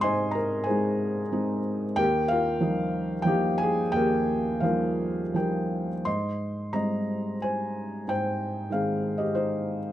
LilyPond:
<<
  \new Staff \with { instrumentName = "Felt piano" } { \time 3/4 \key aes \major \tempo 4 = 91 <c'' ees'' aes'' c'''>8 <bes' bes''>8 <aes' c'' aes''>4. r8 | <g' bes' g''>8 <f' bes' f''>4. <g' g''>8 <aes' aes''>8 | <g' bes' g''>4 <f' bes' f''>4 <g' bes' g''>8. r16 | <ees'' c'''>4 <ees'' bes''>4 <c'' aes''>4 |
<c'' g''>4 <aes' f''>8. <g' ees''>16 <ees' c''>8. r16 | }
  \new Staff \with { instrumentName = "Felt piano" } { \clef bass \time 3/4 \key aes \major aes,4 <aes c' ees'>4 <aes c' ees'>4 | ees,4 <f g ees'>4 <f bes ees'>4 | ees,4 <f g ees'>4 <f g ees'>4 | aes,4 <g aes c'>2 |
aes,4 <ees aes c'>2 | }
>>